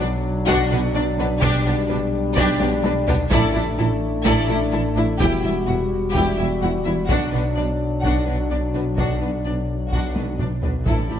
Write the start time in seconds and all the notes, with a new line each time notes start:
Already playing: B1 F#3 D4
0.00 B2 D4 D5
0.47 B1 B2 D4 F#4 F#5, taiko
0.70 B1 B2 B3 D4 B4
0.95 B1 B2 D4 D5
1.19 B1 B2 B3 D4 B4
1.42 B1 B2 G3 D4 G4 D5, taiko
1.66 B1 B2 B3 D4 G4
1.88 B1 B2 D4 B4
2.36 B1 B2 D4 G4 D5, taiko
2.59 B1 B2 B3 D4 G4, taiko high
2.83 B1 B2 D4 B4, taiko high
3.07 B1 B2 B3 D4 G4, taiko low
3.31 A1 A2 A3 D4 E4 A4 D5, taiko
3.54 A1 A2 D4 E4
3.78 A1 A2 E4 A4
4.25 A1 A2 E4 A4 D5, taiko
4.49 A1 A2 D4 E4
4.73 A1 A2 E4 A4
4.96 A1 A2 D4 E4
5.19 E1 E2 G3 E4 F#4 G4 G5, taiko
5.43 E1 E2 E4 E5
5.66 E1 E2 E4 F#4 F#5
6.13 E1 E2 E4 G4 G5, taiko
6.38 E1 E2 E4 E5
6.62 E1 E2 E4 F#4 F#5
6.84 E1 E2 E4 E5
7.07 B1 B2 F#3 D4 F#4 F#5, taiko
7.32 B1 B2 B3 D4 B4
7.55 B1 B2 D4 D5
8.03 B1 B2 D4 F#4 F#5, taiko
8.26 B1 B2 B3 D4 B4
8.50 B1 B2 D4 D5
8.73 B1 B2 B3 D4 B4
8.97 B1 B2 D4 F#4 F#5, taiko
9.21 B1 B2 B3 D4 B4
9.45 B1 B2 D4 D5
9.92 B1 B2 D4 F#4 F#5, taiko
10.15 B1 B2 B3 D4 B4, taiko high
10.39 B1 B2 D4 D5, taiko low-mid
10.62 B1 B2 B3 D4 B4, taiko low
10.86 A1 A2 E3 D4 E4 A4 D5, taiko
11.10 A1 A2 E4 G4